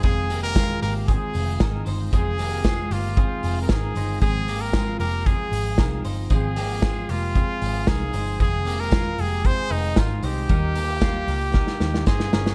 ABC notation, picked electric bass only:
X:1
M:4/4
L:1/16
Q:1/4=115
K:Fm
V:1 name="Picked electric bass" clef=bass
F,,,6 A,,,3 z F,,,2 A,,,2 G,,,2 | F,,,6 G,,,3 z F,,,2 A,,,2 G,,,2 | A,,,6 F,,,3 z A,,,2 C,,2 G,,,2 | A,,,6 F,,,3 z A,,,2 C,,2 G,,,2 |
F,,,6 F,,,3 z F,,,2 A,,,2 C,,2 | E,,6 D,,3 z E,,2 G,,2 G,,,2 |]